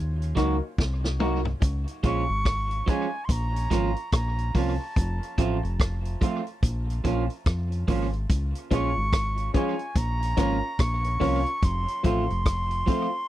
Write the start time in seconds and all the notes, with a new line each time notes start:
Already playing: D#2
0.22 closed hi-hat
0.35 C#2 F#3 A#3 D#4 F#4 A#4, kick, cross-stick, closed hi-hat
0.78 C2, kick, snare
1.04 F#4 A#4, snare
1.19 F#3 A#3 D#4 F#4 A#4, mid tom
1.45 floor tom
1.62 C#2, kick, closed hi-hat
1.88 closed hi-hat
2.03 A#1 F3 G#3 C#4 F4 C#6, kick, closed hi-hat
2.29 G#1
2.45 kick, cross-stick, closed hi-hat
2.71 closed hi-hat
2.86 F3 G#3 C#4 F4 G#5, kick, closed hi-hat
3.25 C6
3.29 A#1 A#5, kick, closed hi-hat
3.56 closed hi-hat
3.71 G#1 F3 A#3 C#4 F4, kick, cross-stick, closed hi-hat
3.96 closed hi-hat
4.12 A#1 A#5, kick, cross-stick, closed hi-hat
4.38 closed hi-hat
4.55 C2 F3 A#3 C#4 F4 A5, kick, open hi-hat
4.96 F1, kick, closed hi-hat
5.23 closed hi-hat
5.38 A1 F3 A3 C4 F4, kick, closed hi-hat
5.63 F1, closed hi-hat
5.80 kick, cross-stick, closed hi-hat
6.05 closed hi-hat
6.21 F3 A3 C4 F4, kick, closed hi-hat
6.47 closed hi-hat
6.63 A#1, kick, closed hi-hat
6.90 closed hi-hat
7.04 A#1 F3 A#3 C#4 F4, kick, closed hi-hat
7.30 closed hi-hat
7.46 F2, kick, cross-stick, closed hi-hat
7.72 closed hi-hat
7.88 G#1 F3 A#3 C#4 F4, kick, open hi-hat
8.13 closed hi-hat
8.30 C#2, kick, closed hi-hat
8.55 closed hi-hat
8.71 A#1 F3 G#3 C#4 F4 G#4 C#5 C#6, kick, closed hi-hat
8.97 G#1
9.13 kick, cross-stick, closed hi-hat
9.37 closed hi-hat
9.54 F3 G#3 C#4 F4 G#4 C#5 G#5, kick, closed hi-hat
9.79 closed hi-hat
9.96 A#1 A#5, kick, closed hi-hat
10.23 closed hi-hat
10.37 G#1 F3 A#3 C#4 F4 A#4 C#5, kick, cross-stick, closed hi-hat
10.79 A#1 C#6, kick, cross-stick, closed hi-hat
11.04 A#4 C#5, closed hi-hat
11.20 C2 F3 A#3 C#4 F4 A#4 C#5, kick, open hi-hat
11.46 closed hi-hat
11.63 F1 C6, kick, closed hi-hat
11.88 closed hi-hat
12.03 A1 F3 A3 C4 F4 A4 C5 C6, kick, closed hi-hat
12.30 F1, closed hi-hat
12.46 kick, cross-stick, closed hi-hat
12.71 closed hi-hat
12.86 F3 A3 C4 F4 A4 C5, kick, closed hi-hat